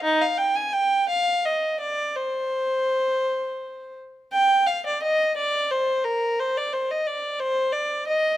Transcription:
\new Staff \with { instrumentName = "Violin" } { \time 6/8 \key c \minor \tempo 4. = 58 ees'16 f''16 g''16 aes''16 g''8 f''8 ees''8 d''8 | c''2~ c''8 r8 | g''8 f''16 d''16 ees''8 d''8 c''8 bes'8 | c''16 d''16 c''16 ees''16 d''8 c''8 d''8 ees''8 | }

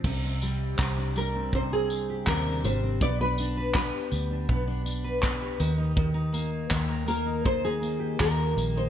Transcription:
<<
  \new Staff \with { instrumentName = "Nylon-string guitar" } { \time 4/4 \key c \minor \tempo 4 = 81 r4. bes'8 c''16 aes'8. bes'8 c''8 | d''16 b'8. b'4. r4. | r4. bes'8 c''16 aes'8. bes'8. c''16 | }
  \new Staff \with { instrumentName = "Steel-string acoustic guitar" } { \time 4/4 \key c \minor c16 c'16 g8 c16 d'16 g16 c'16 c16 c'8 g'16 c16 d'16 g16 c'16 | b16 d'16 d'16 b'16 b16 g'16 d'16 d'16 b16 d'16 d'16 b'16 b16 g'16 ees16 ees'16 | ees16 ees'16 bes8 ees16 bes'16 bes16 ees'16 ees16 ees'16 bes16 g'16 ees16 bes'16 bes16 ees'16 | }
  \new Staff \with { instrumentName = "Fingered electric bass" } { \clef bass \time 4/4 \key c \minor c,4 c,2 ees,8 aes,,8 | b,,4~ b,,16 r16 d,8 b,,4. ees,8~ | ees,4 ees,2 ees,8 bes,,8 | }
  \new DrumStaff \with { instrumentName = "Drums" } \drummode { \time 4/4 <cymc bd>8 tamb8 <hc bd>8 tamb8 bd8 tamb8 <hc bd>8 tamb8 | bd8 tamb8 <hc bd>8 tamb8 bd8 tamb8 <hc bd>8 tamb8 | bd8 tamb8 <hc bd>8 tamb8 bd8 tamb8 <hc bd>8 tamb8 | }
>>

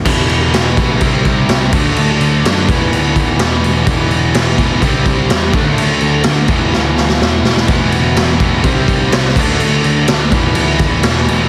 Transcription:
<<
  \new Staff \with { instrumentName = "Distorted electric guitar" } { \clef bass \time 4/4 \key e \minor \tempo 4 = 126 <e g b e'>2 <c g c' e'>4. <d fis a d'>8~ | <d fis a d'>4. <e g b e'>2~ <e g b e'>8 | <e g b e'>2 <c g c' e'>4. <d fis a d'>8~ | <d fis a d'>4. <e g b e'>2~ <e g b e'>8 |
<e g b e'>2 <c g c' e'>4. <d fis a d'>8~ | <d fis a d'>4. <e g b e'>2~ <e g b e'>8 | }
  \new Staff \with { instrumentName = "Overdriven electric guitar" } { \clef bass \time 4/4 \key e \minor <e, b, e>4. <e, b, e>8 <c g c'>4. <d a d'>8~ | <d a d'>4 <d a d'>8 <e, b, e>4. <e, b, e>4 | <e, b, e>4. <e, b, e>8 <c g c'>4. <d a d'>8~ | <d a d'>4 <d a d'>8 <e, b, e>4. <e, b, e>4 |
<e, b, e>4. <e, b, e>8 <c g c'>4. <d a d'>8~ | <d a d'>4 <d a d'>8 <e, b, e>4. <e, b, e>4 | }
  \new Staff \with { instrumentName = "Overdriven electric guitar" } { \clef bass \time 4/4 \key e \minor <e, b, e>4. <e, b, e>8 <c g c'>4. <d a d'>8~ | <d a d'>4 <d a d'>8 <e, b, e>4. <e, b, e>4 | <e, b, e>4. <e, b, e>8 <c g c'>4. <d a d'>8~ | <d a d'>4 <d a d'>8 <e, b, e>4. <e, b, e>4 |
<e, b, e>4. <e, b, e>8 <c g c'>4. <d a d'>8~ | <d a d'>4 <d a d'>8 <e, b, e>4. <e, b, e>4 | }
  \new Staff \with { instrumentName = "Picked electric bass" } { \clef bass \time 4/4 \key e \minor e,,4 e,,8 b,,8 c,8 r8 c,8 d,8 | d,8 d,8 fis,8 e,,8 d,4 e,,8 e,,8 | e,,4 e,,8 e,,8 c,8 c,8 e,8 d,8 | d,8 d,8 d,8 e,,8 d,4 e,,8 e,,8 |
e,,4 e,,8 e,,8 c,8 c,8 c,8 d,8 | d,8 d,8 d,8 e,,8 d,4 e,,8 e,,8 | }
  \new DrumStaff \with { instrumentName = "Drums" } \drummode { \time 4/4 <cymc bd>8 cymc8 <cymc sn>8 <cymc bd>8 <cymc bd>8 <cymc bd>8 <cymc sn>8 <cymc bd>8 | cymc8 cymc8 <cymc sn>8 <cymc bd>8 cymc8 <cymc bd>8 <cymc sn>8 cymc8 | <cymc bd>8 cymc8 <cymc sn>8 <cymc bd>8 <cymc bd>8 <cymc bd>8 <cymc sn>8 <cymc bd>8 | cymc8 cymc8 <cymc sn>8 <cymc bd>8 sn8 sn16 sn16 sn8 sn16 sn16 |
<cymc bd>8 cymc8 <cymc sn>8 <cymc bd>8 <cymc bd>8 <cymc bd>8 <cymc sn>8 <cymc bd>8 | cymc8 cymc8 <cymc sn>8 <cymc bd>8 cymc8 <cymc bd>8 <cymc sn>8 cymc8 | }
>>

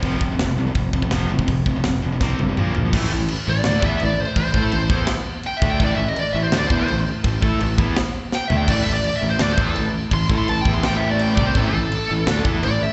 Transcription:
<<
  \new Staff \with { instrumentName = "Lead electric guitar" } { \time 4/4 \key f \lydian \tempo 4 = 167 r1 | r1 | \key a \minor r4. d''4 e''8 d''8 c''8 | c''2 r4 \tuplet 3/2 { g''8 e''8 g''8 } |
\tuplet 3/2 { d''8 e''8 dis''8 d''8 e''8 c''8 d''8 c''8 c''8 } r4 | r2. \tuplet 3/2 { g''8 e''8 g''8 } | \tuplet 3/2 { d''8 e''8 d''8 d''8 e''8 c''8 d''8 c''8 a'8 } r4 | \tuplet 3/2 { c'''8 r8 c'''8 a''8 g''8 c'''8 g''8 e''8 d''8 g''8 d''8 c''8 } |
\tuplet 3/2 { a'8 a'4~ } a'4. r8 d''8 e''8 | }
  \new Staff \with { instrumentName = "Distorted electric guitar" } { \clef bass \time 4/4 \key f \lydian <f, c f>8 <f, c>16 <f, c>16 <f, c>8 <f, c>16 <f, c>16 <f, c>8 <f, c>16 <f, c>16 <f, c f>8 <f, c>16 <f, c>16 | <f, c>8 <f, c>16 <f, c>16 <f, c>8 <f, c>16 <f, c>16 <c g c'>8 <c g>16 <c g>16 <bes, f bes>8 <bes, f>16 <bes, f>16 | \key a \minor <a, e a>8 <a, e>8 r8 <a, e>8 <d a d'>8 <e b e'>8 <a, e>8 r8 | <a, e>8 <a e' a'>8 <a, e>8 <e b e'>8 r4. <d a d'>8 |
<a, e a>8 <a, e>8 r8 <a, e>8 <d a d'>8 <e b e'>8 <a, e>8 r8 | <a, e>8 <a e' a'>8 <a, e>8 <e b e'>8 r4. <d a d'>8 | <a, e a>8 <a, e>8 r8 <a, e>8 <d a d'>8 <e b e'>8 <a, e>8 r8 | <a, e>8 <a e' a'>8 <a, e>8 <e b e'>8 <a, e a>4. <c g c'>8 |
<a, e a>8 <a, e>8 r8 <a, e>8 <d a d'>8 <e b e'>8 <a, e>8 r8 | }
  \new Staff \with { instrumentName = "Distorted electric guitar" } { \clef bass \time 4/4 \key f \lydian <f, c f>8 <f, c>16 <f, c>16 <f, c>8 <f, c>16 <f, c>16 <f, c>8 <f, c>16 <f, c>16 <f, c f>8 <f, c>16 <f, c>16 | <f, c>8 <f, c>16 <f, c>16 <f, c>8 <f, c>16 <f, c>16 <c g c'>8 <c g>16 <c g>16 <bes, f bes>8 <bes, f>16 <bes, f>16 | \key a \minor <a, e a>8 <a, e>8 r8 <a, e>8 <d a d'>8 <e b e'>8 <a, e>8 r8 | <a, e>8 <a e' a'>8 <a, e>8 <e b e'>8 r4. <d a d'>8 |
<a, e a>8 <a, e>8 r8 <a, e>8 <d a d'>8 <e b e'>8 <a, e>8 r8 | <a, e>8 <a e' a'>8 <a, e>8 <e b e'>8 r4. <d a d'>8 | <a, e a>8 <a, e>8 r8 <a, e>8 <d a d'>8 <e b e'>8 <a, e>8 r8 | <a, e>8 <a e' a'>8 <a, e>8 <e b e'>8 <a, e a>4. <c g c'>8 |
<a, e a>8 <a, e>8 r8 <a, e>8 <d a d'>8 <e b e'>8 <a, e>8 r8 | }
  \new Staff \with { instrumentName = "Fingered electric bass" } { \clef bass \time 4/4 \key f \lydian f,,8 f,,8 f,,8 c,8 f,,8 f,,8 f,,8 a,,8 | f,,8 f,,8 f,,8 f,,8 c,8 g,,8 bes,,8 bes,,8 | \key a \minor a,,8 a,,8 r8 a,,8 d,8 e,8 a,,8 r8 | a,,8 a,8 a,,8 e,8 r4. d,8 |
a,,8 a,,8 r8 a,,8 d,8 e,8 a,,8 r8 | a,,8 a,8 a,,8 e,8 r4. d,8 | a,,8 a,,8 r8 a,,8 d,8 e,8 a,,8 r8 | a,,8 a,8 a,,8 e,8 a,,4. c,8 |
a,,8 a,,8 r8 a,,8 d,8 e,8 a,,8 r8 | }
  \new DrumStaff \with { instrumentName = "Drums" } \drummode { \time 4/4 <hho bd>8 bd8 <hho sn>4 <hho bd>8 bd16 bd16 <hho sn>8. bd16 | <hho bd>8 bd8 <hho sn>4 <bd sn>8 tommh8 toml8 tomfh8 | <cymc bd>4 cymc4 <cymc sn>8 bd8 cymc4 | <cymc bd>8 bd8 cymc8 bd8 <cymc sn>4 cymc8 bd8 |
<cymc bd>4 cymc4 <cymc sn>8 bd8 cymc4 | <cymc bd>8 bd8 cymc8 bd8 <cymc sn>4 sn8 tomfh8 | <cymc bd>4 cymc4 <cymc sn>8 bd8 cymc4 | <cymc bd>8 bd8 cymc8 bd8 <cymc sn>4 cymc8 bd8 |
<cymc bd>4 cymc4 <cymc sn>8 bd8 cymc4 | }
>>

